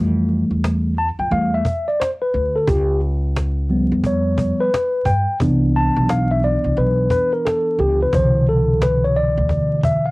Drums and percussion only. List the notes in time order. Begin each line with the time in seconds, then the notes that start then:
0.29 cajon slap
0.64 cajon slap
0.97 cajon slap
1.32 cajon slap
1.65 cajon bass
1.88 cajon slap
2.01 cajon slap
2.34 cajon slap
2.68 cajon bass
3.01 cajon slap
3.37 cajon slap
3.69 cajon slap
4.04 cajon bass, cajon slap
4.38 cajon bass
4.74 cajon slap
5.05 cajon bass
5.40 cajon bass
5.74 cajon slap
6.09 cajon slap
6.42 cajon slap
6.77 cajon slap
7.10 cajon bass
7.33 cajon slap
7.47 cajon slap
7.79 cajon slap
8.13 cajon bass
8.47 cajon slap
8.82 cajon slap
9.05 cajon slap
9.15 cajon slap
9.49 cajon bass, cajon slap
9.83 cajon bass